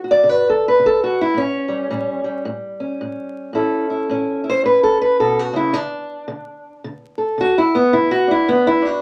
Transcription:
0, 0, Header, 1, 2, 480
1, 0, Start_track
1, 0, Tempo, 547945
1, 1190, Time_signature, 4, 2, 24, 8
1, 7900, End_track
2, 0, Start_track
2, 0, Title_t, "Steel-string acoustic guitar"
2, 0, Program_c, 0, 25
2, 0, Note_on_c, 0, 50, 72
2, 35, Note_on_c, 0, 66, 48
2, 95, Note_on_c, 0, 74, 99
2, 185, Note_off_c, 0, 50, 0
2, 206, Note_on_c, 0, 50, 79
2, 255, Note_off_c, 0, 74, 0
2, 255, Note_on_c, 0, 71, 99
2, 384, Note_off_c, 0, 66, 0
2, 402, Note_off_c, 0, 71, 0
2, 433, Note_on_c, 0, 69, 84
2, 571, Note_off_c, 0, 69, 0
2, 596, Note_on_c, 0, 71, 90
2, 662, Note_off_c, 0, 50, 0
2, 696, Note_on_c, 0, 50, 71
2, 733, Note_off_c, 0, 71, 0
2, 754, Note_on_c, 0, 69, 94
2, 892, Note_off_c, 0, 69, 0
2, 907, Note_on_c, 0, 66, 87
2, 1049, Note_off_c, 0, 66, 0
2, 1063, Note_on_c, 0, 64, 90
2, 1147, Note_off_c, 0, 50, 0
2, 1175, Note_on_c, 0, 45, 72
2, 1206, Note_on_c, 0, 61, 98
2, 1207, Note_off_c, 0, 64, 0
2, 1475, Note_on_c, 0, 55, 48
2, 1627, Note_off_c, 0, 45, 0
2, 1668, Note_on_c, 0, 45, 81
2, 1669, Note_off_c, 0, 55, 0
2, 1673, Note_on_c, 0, 55, 51
2, 1960, Note_off_c, 0, 55, 0
2, 1964, Note_on_c, 0, 55, 48
2, 2114, Note_off_c, 0, 45, 0
2, 2148, Note_on_c, 0, 45, 77
2, 2160, Note_off_c, 0, 61, 0
2, 2454, Note_on_c, 0, 61, 48
2, 2594, Note_off_c, 0, 45, 0
2, 2635, Note_on_c, 0, 45, 73
2, 3078, Note_off_c, 0, 45, 0
2, 3093, Note_off_c, 0, 61, 0
2, 3093, Note_on_c, 0, 45, 76
2, 3104, Note_off_c, 0, 55, 0
2, 3107, Note_on_c, 0, 61, 53
2, 3108, Note_on_c, 0, 64, 53
2, 3113, Note_on_c, 0, 69, 52
2, 3406, Note_off_c, 0, 64, 0
2, 3416, Note_on_c, 0, 64, 50
2, 3547, Note_off_c, 0, 45, 0
2, 3586, Note_on_c, 0, 45, 72
2, 3587, Note_off_c, 0, 61, 0
2, 3598, Note_on_c, 0, 61, 50
2, 3877, Note_off_c, 0, 64, 0
2, 3888, Note_on_c, 0, 64, 49
2, 3934, Note_off_c, 0, 69, 0
2, 3938, Note_on_c, 0, 72, 100
2, 4033, Note_off_c, 0, 45, 0
2, 4061, Note_on_c, 0, 45, 73
2, 4075, Note_off_c, 0, 72, 0
2, 4078, Note_on_c, 0, 71, 94
2, 4231, Note_off_c, 0, 71, 0
2, 4234, Note_on_c, 0, 69, 90
2, 4390, Note_off_c, 0, 69, 0
2, 4393, Note_on_c, 0, 71, 92
2, 4511, Note_off_c, 0, 45, 0
2, 4552, Note_off_c, 0, 71, 0
2, 4553, Note_on_c, 0, 47, 61
2, 4555, Note_on_c, 0, 69, 90
2, 4714, Note_off_c, 0, 69, 0
2, 4724, Note_off_c, 0, 64, 0
2, 4724, Note_on_c, 0, 66, 85
2, 4841, Note_off_c, 0, 47, 0
2, 4845, Note_on_c, 0, 49, 70
2, 4871, Note_on_c, 0, 64, 88
2, 4878, Note_off_c, 0, 66, 0
2, 5018, Note_on_c, 0, 50, 76
2, 5024, Note_off_c, 0, 61, 0
2, 5024, Note_on_c, 0, 62, 112
2, 5030, Note_off_c, 0, 49, 0
2, 5032, Note_off_c, 0, 64, 0
2, 5469, Note_off_c, 0, 50, 0
2, 5499, Note_on_c, 0, 50, 76
2, 5948, Note_off_c, 0, 50, 0
2, 5987, Note_off_c, 0, 62, 0
2, 5995, Note_on_c, 0, 50, 80
2, 6288, Note_on_c, 0, 69, 49
2, 6436, Note_off_c, 0, 50, 0
2, 6462, Note_on_c, 0, 50, 68
2, 6488, Note_on_c, 0, 66, 108
2, 6636, Note_off_c, 0, 69, 0
2, 6639, Note_off_c, 0, 66, 0
2, 6640, Note_on_c, 0, 64, 88
2, 6787, Note_on_c, 0, 59, 98
2, 6795, Note_off_c, 0, 64, 0
2, 6909, Note_off_c, 0, 50, 0
2, 6947, Note_on_c, 0, 50, 75
2, 6948, Note_off_c, 0, 59, 0
2, 6948, Note_on_c, 0, 64, 94
2, 7107, Note_on_c, 0, 66, 100
2, 7108, Note_off_c, 0, 64, 0
2, 7248, Note_on_c, 0, 62, 47
2, 7268, Note_off_c, 0, 66, 0
2, 7280, Note_on_c, 0, 64, 102
2, 7391, Note_off_c, 0, 50, 0
2, 7431, Note_on_c, 0, 50, 78
2, 7434, Note_off_c, 0, 64, 0
2, 7434, Note_on_c, 0, 59, 98
2, 7590, Note_off_c, 0, 59, 0
2, 7596, Note_on_c, 0, 64, 111
2, 7713, Note_off_c, 0, 62, 0
2, 7723, Note_on_c, 0, 62, 50
2, 7752, Note_off_c, 0, 64, 0
2, 7755, Note_on_c, 0, 66, 110
2, 7873, Note_off_c, 0, 50, 0
2, 7900, Note_off_c, 0, 62, 0
2, 7900, Note_off_c, 0, 66, 0
2, 7900, End_track
0, 0, End_of_file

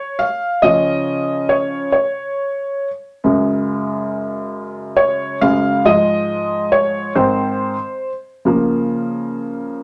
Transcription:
0, 0, Header, 1, 2, 480
1, 0, Start_track
1, 0, Key_signature, -5, "major"
1, 0, Tempo, 868307
1, 353, Time_signature, 6, 3, 24, 8
1, 5435, End_track
2, 0, Start_track
2, 0, Title_t, "Felt piano"
2, 0, Program_c, 0, 0
2, 0, Note_on_c, 0, 73, 79
2, 104, Note_on_c, 0, 77, 89
2, 118, Note_off_c, 0, 73, 0
2, 344, Note_on_c, 0, 75, 89
2, 348, Note_on_c, 0, 49, 51
2, 350, Note_on_c, 0, 53, 45
2, 355, Note_on_c, 0, 61, 60
2, 356, Note_off_c, 0, 77, 0
2, 824, Note_on_c, 0, 73, 79
2, 844, Note_off_c, 0, 75, 0
2, 1050, Note_off_c, 0, 49, 0
2, 1051, Note_off_c, 0, 53, 0
2, 1053, Note_off_c, 0, 61, 0
2, 1055, Note_off_c, 0, 73, 0
2, 1064, Note_on_c, 0, 73, 75
2, 1588, Note_off_c, 0, 73, 0
2, 1790, Note_on_c, 0, 42, 53
2, 1793, Note_on_c, 0, 49, 50
2, 1797, Note_on_c, 0, 56, 54
2, 2745, Note_on_c, 0, 73, 84
2, 2973, Note_off_c, 0, 73, 0
2, 2984, Note_off_c, 0, 42, 0
2, 2985, Note_off_c, 0, 49, 0
2, 2989, Note_off_c, 0, 56, 0
2, 2992, Note_on_c, 0, 42, 48
2, 2993, Note_on_c, 0, 49, 44
2, 2993, Note_on_c, 0, 77, 99
2, 2997, Note_on_c, 0, 56, 52
2, 3212, Note_off_c, 0, 42, 0
2, 3213, Note_off_c, 0, 49, 0
2, 3214, Note_off_c, 0, 56, 0
2, 3232, Note_on_c, 0, 44, 50
2, 3236, Note_on_c, 0, 53, 47
2, 3237, Note_on_c, 0, 75, 89
2, 3239, Note_on_c, 0, 56, 57
2, 3242, Note_off_c, 0, 77, 0
2, 3694, Note_off_c, 0, 75, 0
2, 3714, Note_on_c, 0, 73, 82
2, 3932, Note_off_c, 0, 44, 0
2, 3934, Note_off_c, 0, 53, 0
2, 3935, Note_off_c, 0, 56, 0
2, 3938, Note_off_c, 0, 73, 0
2, 3953, Note_on_c, 0, 44, 57
2, 3955, Note_on_c, 0, 51, 49
2, 3956, Note_on_c, 0, 72, 74
2, 3960, Note_on_c, 0, 60, 59
2, 4274, Note_off_c, 0, 44, 0
2, 4275, Note_off_c, 0, 51, 0
2, 4277, Note_off_c, 0, 60, 0
2, 4474, Note_off_c, 0, 72, 0
2, 4672, Note_on_c, 0, 49, 52
2, 4676, Note_on_c, 0, 53, 47
2, 4679, Note_on_c, 0, 58, 56
2, 5435, Note_off_c, 0, 49, 0
2, 5435, Note_off_c, 0, 53, 0
2, 5435, Note_off_c, 0, 58, 0
2, 5435, End_track
0, 0, End_of_file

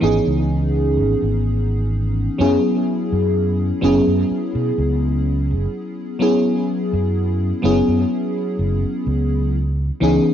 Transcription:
0, 0, Header, 1, 4, 480
1, 0, Start_track
1, 0, Tempo, 952381
1, 1210, Time_signature, 4, 2, 24, 8
1, 5210, End_track
2, 0, Start_track
2, 0, Title_t, "FM electric piano"
2, 0, Program_c, 0, 5
2, 0, Control_c, 0, 64, 127
2, 0, Note_on_c, 0, 52, 94
2, 0, Note_on_c, 0, 59, 83
2, 0, Note_on_c, 0, 61, 87
2, 0, Note_on_c, 0, 63, 87
2, 0, Note_on_c, 0, 68, 106
2, 2, Note_off_c, 0, 52, 0
2, 2, Note_on_c, 0, 52, 89
2, 5, Note_off_c, 0, 59, 0
2, 5, Note_on_c, 0, 59, 84
2, 9, Note_off_c, 0, 61, 0
2, 9, Note_on_c, 0, 61, 83
2, 12, Note_off_c, 0, 63, 0
2, 12, Note_on_c, 0, 63, 82
2, 17, Note_off_c, 0, 68, 0
2, 17, Note_on_c, 0, 68, 101
2, 1178, Note_off_c, 0, 52, 0
2, 1180, Note_off_c, 0, 59, 0
2, 1182, Note_off_c, 0, 61, 0
2, 1183, Note_off_c, 0, 63, 0
2, 1186, Note_off_c, 0, 68, 0
2, 1201, Note_on_c, 0, 54, 92
2, 1204, Note_on_c, 0, 59, 84
2, 1210, Note_on_c, 0, 61, 86
2, 1213, Note_on_c, 0, 64, 84
2, 1216, Note_on_c, 0, 68, 103
2, 1217, Control_c, 0, 64, 0
2, 1301, Control_c, 0, 64, 127
2, 1898, Note_off_c, 0, 54, 0
2, 1899, Note_off_c, 0, 59, 0
2, 1902, Note_off_c, 0, 61, 0
2, 1903, Note_off_c, 0, 64, 0
2, 1905, Note_off_c, 0, 68, 0
2, 1921, Note_on_c, 0, 54, 94
2, 1925, Note_on_c, 0, 59, 82
2, 1928, Note_on_c, 0, 61, 84
2, 1933, Note_on_c, 0, 64, 81
2, 1936, Note_on_c, 0, 68, 102
2, 3098, Note_off_c, 0, 54, 0
2, 3099, Note_off_c, 0, 59, 0
2, 3101, Note_off_c, 0, 61, 0
2, 3104, Note_off_c, 0, 64, 0
2, 3105, Note_off_c, 0, 68, 0
2, 3121, Note_on_c, 0, 54, 92
2, 3125, Note_on_c, 0, 59, 84
2, 3128, Note_on_c, 0, 61, 85
2, 3132, Note_on_c, 0, 64, 85
2, 3136, Note_on_c, 0, 68, 103
2, 3817, Note_off_c, 0, 54, 0
2, 3820, Note_off_c, 0, 59, 0
2, 3821, Note_off_c, 0, 61, 0
2, 3823, Note_off_c, 0, 64, 0
2, 3825, Note_off_c, 0, 68, 0
2, 3841, Note_on_c, 0, 54, 92
2, 3846, Note_on_c, 0, 59, 87
2, 3850, Note_on_c, 0, 61, 87
2, 3853, Note_on_c, 0, 64, 87
2, 3857, Note_on_c, 0, 68, 103
2, 4792, Note_off_c, 0, 54, 0
2, 4794, Note_off_c, 0, 59, 0
2, 4796, Note_off_c, 0, 61, 0
2, 4798, Note_off_c, 0, 64, 0
2, 4800, Note_off_c, 0, 68, 0
2, 4816, Control_c, 0, 64, 0
2, 4891, Control_c, 0, 64, 127
2, 5042, Note_on_c, 0, 52, 95
2, 5046, Note_on_c, 0, 59, 87
2, 5050, Note_on_c, 0, 61, 86
2, 5053, Note_on_c, 0, 63, 87
2, 5058, Note_on_c, 0, 68, 101
2, 5210, Note_off_c, 0, 52, 0
2, 5210, Note_off_c, 0, 59, 0
2, 5210, Note_off_c, 0, 61, 0
2, 5210, Note_off_c, 0, 63, 0
2, 5210, Note_off_c, 0, 68, 0
2, 5210, End_track
3, 0, Start_track
3, 0, Title_t, "Fretless electric bass"
3, 0, Program_c, 1, 35
3, 11, Note_on_c, 1, 32, 96
3, 92, Note_off_c, 1, 32, 0
3, 136, Note_on_c, 1, 37, 96
3, 491, Note_on_c, 1, 32, 93
3, 498, Note_off_c, 1, 37, 0
3, 572, Note_off_c, 1, 32, 0
3, 616, Note_on_c, 1, 32, 82
3, 1147, Note_off_c, 1, 32, 0
3, 1209, Note_on_c, 1, 42, 101
3, 1291, Note_off_c, 1, 42, 0
3, 1574, Note_on_c, 1, 42, 85
3, 1866, Note_off_c, 1, 42, 0
3, 1929, Note_on_c, 1, 30, 98
3, 2011, Note_off_c, 1, 30, 0
3, 2053, Note_on_c, 1, 42, 95
3, 2130, Note_off_c, 1, 42, 0
3, 2294, Note_on_c, 1, 47, 93
3, 2370, Note_off_c, 1, 47, 0
3, 2410, Note_on_c, 1, 37, 88
3, 2776, Note_on_c, 1, 30, 89
3, 2783, Note_off_c, 1, 37, 0
3, 2851, Note_off_c, 1, 30, 0
3, 3495, Note_on_c, 1, 42, 83
3, 3787, Note_off_c, 1, 42, 0
3, 3849, Note_on_c, 1, 30, 97
3, 3931, Note_off_c, 1, 30, 0
3, 3973, Note_on_c, 1, 42, 96
3, 4049, Note_off_c, 1, 42, 0
3, 4329, Note_on_c, 1, 30, 83
3, 4451, Note_off_c, 1, 30, 0
3, 4570, Note_on_c, 1, 37, 80
3, 4986, Note_off_c, 1, 37, 0
3, 5049, Note_on_c, 1, 37, 100
3, 5131, Note_off_c, 1, 37, 0
3, 5210, End_track
4, 0, Start_track
4, 0, Title_t, "Muted fretless electric bass strokes"
4, 2171, Note_on_c, 9, 29, 44
4, 2222, Note_off_c, 9, 29, 0
4, 4454, Note_on_c, 9, 29, 44
4, 4504, Note_off_c, 9, 29, 0
4, 5210, End_track
0, 0, End_of_file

